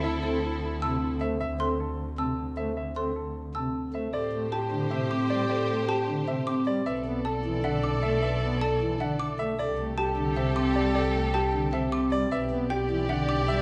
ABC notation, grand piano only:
X:1
M:7/8
L:1/8
Q:1/4=154
K:Ador
V:1 name="Grand piano"
e z A z a z e | e z A z a z e | e z A z a z e | d z G z e z d |
d z G z e z d | e z A z f z e | e z A z f z e | d z G z e z d |
d z G z e z d | e z G z f z e |]